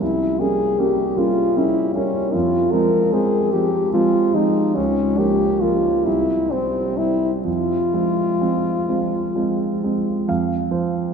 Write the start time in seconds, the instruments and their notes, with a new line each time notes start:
0.01 grand piano C2, french horn E4
0.40 grand piano G3 A#3 C#4, french horn G#4
0.78 grand piano G3 A#3 C#4, french horn G4
1.17 grand piano G3 A#3 C#4, french horn F4
1.56 grand piano G3 A#3 C#4, french horn E4
1.95 grand piano G3 A#3 C#4, french horn C#4
2.34 grand piano F2, french horn F4
2.72 grand piano F3 G#3 C4, french horn A#4
3.12 grand piano F3 G#3 C4, french horn G#4
3.52 grand piano F3 G#3 C4, french horn G4
3.94 grand piano F3 G#3 C4, french horn F4
4.34 grand piano F3 G#3 C4, french horn D#4
4.75 grand piano C#2, french horn C#4
5.17 grand piano F3 A#3, french horn G4
5.61 grand piano F3 A#3, french horn F4
6.05 grand piano C2, french horn E4
6.50 grand piano G3 C4, french horn C4
6.97 grand piano G3 C4, french horn E4
7.44 grand piano F2, french horn F4
7.93 grand piano F3 G#3 C4
8.41 grand piano F3 G#3 C4
8.89 grand piano F3 G#3 C4
9.35 grand piano F3 G#3 C4
9.84 grand piano F3 G#3 C4
10.28 grand piano F2 F5
10.71 grand piano F3 C5